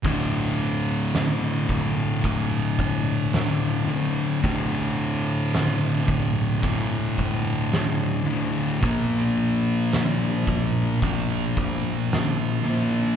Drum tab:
HH |o-o-o-o-|o-o-o-o-|o-o-o-o-|
SD |--o---o-|--o---o-|--o---o-|
BD |o--ooo--|o--ooo--|o--ooo--|